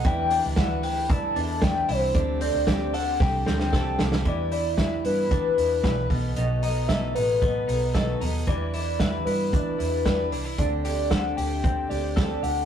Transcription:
<<
  \new Staff \with { instrumentName = "Soft synth lead" } { \time 4/4 \key e \minor \tempo 4 = 114 g''4 fis''8 g''8 a''4 g''8 c''8~ | c''8 d''4 fis''8 g''4. r8 | d''8 d''8 e''8 b'2 r8 | dis''8 dis''8 e''8 b'2 r8 |
d''8 d''8 e''8 b'2 r8 | d''8 d''8 fis''8 g''4 d''4 fis''8 | }
  \new Staff \with { instrumentName = "Clean electric guitar" } { \time 4/4 \key e \minor e8 d'8 e'8 b'8 e'8 d'4 e'8 | d8 c'8 g'8 a'8 g'8 c'8 a'8 g'8 | e8 e'8 b'8 e'8 d'8 e'8 b'8 b,8 | b,8 dis'8 a'8 dis'8 b8 dis'8 a'8 dis'8 |
e8 e'8 b'8 e'8 d'8 e'8 b'8 d'16 e'16 | d8 g'8 a'8 g'8 c'8 g'8 a'8 g'8 | }
  \new Staff \with { instrumentName = "Twelve-string acoustic guitar" } { \time 4/4 \key e \minor <e g d' e' b'>8 <e' b'>8 <e g d' e' b'>8 <d' e' b'>8 <g d' e' b'>8 <d' e' b'>8 <e g d' e' b'>8 <d' e' b'>8 | <d g c' g' a'>8 <c' g' a'>8 <d g c' g' a'>8 <c' g' a'>8 <g c' g' a'>8 <c' g' a'>8 <d g c' g' a'>8 <c' g' a'>8 | <e g d' e' b'>8 <d' e' b'>8 <e g d' e' b'>8 <d' e' b'>8 <g d' e' b'>8 <d' e' b'>8 <e g d' e' b'>8 <fis b dis' a'>8 | <b, dis fis b dis' a'>8 <fis b dis' a'>8 <b, dis fis b dis' a'>8 <fis b dis' a'>8 <fis b dis' a'>8 <fis b dis' a'>8 <b, dis fis b dis' a'>8 <fis b dis' a'>8 |
<e g d' e' b'>8 <d' e' b'>8 <e g d' e' b'>8 <d' e' b'>8 <g d' e' b'>8 <d' e' b'>8 <e g d' e' b'>8 <d' e' b'>8 | <d g c' g' a'>8 <c' g' a'>8 <d g c' g' a'>8 <c' g' a'>8 <g c' g' a'>8 <c' g' a'>8 <d g c' g' a'>8 <c' g' a'>8 | }
  \new Staff \with { instrumentName = "Fingered electric bass" } { \clef bass \time 4/4 \key e \minor e,8. d,4~ d,16 g,8 e,4 c,8 | d,8. d,4~ d,16 c,8 d,8 c,8 c,8 | e,4. g,8 e8 e,8 b,,8 b,,8 | b,,4. a,,4 b,,4 dis,8 |
e,4. g,8 e8 e,4 c,8 | d,4. d,4 d,4 d,8 | }
  \new DrumStaff \with { instrumentName = "Drums" } \drummode { \time 4/4 <hh bd>8 hho8 <hh bd sn>8 hho8 <hh bd>8 hho8 <hh bd sn>8 hho8 | <hh bd>8 hho8 <hh bd sn>8 hho8 <bd sn>8 sn16 sn16 <bd sn>8 sn16 sn16 | <hh bd>8 hho8 <hh bd sn>8 hho8 <hh bd>8 hho8 <hh bd sn>8 <hho bd>8 | hh8 hho8 <hh bd sn>8 hho8 <hh bd>8 hho8 <hh bd sn>8 hho8 |
<hh bd>8 hho8 <hh bd sn>8 hho8 <hh bd>8 hho8 <hh bd sn>8 hho8 | <hh bd>8 hho8 <hh bd sn>8 hho8 <hh bd>8 hho8 <hh bd sn>8 hho8 | }
>>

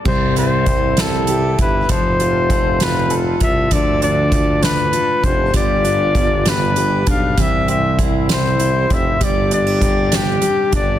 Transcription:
<<
  \new Staff \with { instrumentName = "Flugelhorn" } { \time 6/8 \key c \major \tempo 4. = 66 c''8 c''4 a'4 b'8 | c''4. b'8 r8 e''8 | d''8 d''4 b'4 c''8 | d''4. b'4 f''8 |
e''8 e''8 r8 c''4 e''8 | d''8 d''4 g'4 d''8 | }
  \new Staff \with { instrumentName = "French horn section" } { \time 6/8 \key c \major e'2. | f'2. | d'2 r8 g'8 | f'2~ f'8 r8 |
e'2. | g'2. | }
  \new Staff \with { instrumentName = "Grand piano" } { \time 6/8 \key c \major c8 e'8 g'8 e'8 g'8 e'8 | f8 f'8 a'8 f'8 a'8 f'8 | d8 d'8 f'8 d'8 f'8 d'8 | g8 d'8 g8 d'8 g8 d'8 |
c8 c'8 e'8 c'8 e'8 c'8 | g8 d'8 g8 d'8 g8 d'8 | }
  \new Staff \with { instrumentName = "Steel-string acoustic guitar" } { \time 6/8 \key c \major <g g'>8 e'8 c'8 e'8 g'8 e'8 | <f a'>8 f'8 c'8 f'8 a'8 f'8 | <f a'>8 d'8 a8 d'8 a'8 d'8 | <b g'>8 d'8 b8 d'8 g'8 d'8 |
<e g'>8 e'8 c'8 e'8 g'8 e'8 | <g g'>8 c'16 d'16 c'8 d'8 g'8 d'8 | }
  \new Staff \with { instrumentName = "Tuba" } { \clef bass \time 6/8 \key c \major c,2~ c,8 g,,8 | f,,2~ f,,8 c,8 | d,2 r8 f,,8 | g,,2~ g,,8 b,,8 |
c,2~ c,8 f,,8 | g,,2 r8 g,,8 | }
  \new DrumStaff \with { instrumentName = "Drums" } \drummode { \time 6/8 <cymc bd>8 hh8 <hh bd>8 <hh sn>8 hh8 <hh bd>8 | <hh bd>8 hh8 <hh bd>8 <hh sn>8 hh8 <hh bd>8 | <hh bd>8 hh8 <hh bd>8 <hh sn>8 hh8 <hh bd>8 | <hh bd>8 hh8 <hh bd>8 <hh sn>8 hh8 <hh bd>8 |
<hh bd>8 hh8 <hh bd>8 <hh sn>8 hh8 <hh bd>8 | <hh bd>8 hh8 <hh bd>8 <hh sn>8 hh8 <hh bd>8 | }
>>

